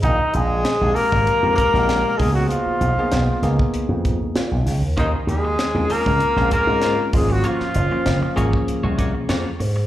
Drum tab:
HH |x-x-x-o-x-x-x-o-|x-x-x-x-x-x-x-o-|x-x-x-o-x-x-x-o-|x-x-x-x-x-x-x-o-|
SD |----o------oo---|----o-o-----o-o-|----o----o--o---|-o--o-------o---|
BD |o------o--o---o-|-------o--o-----|o------o--o---o-|-------o--o-----|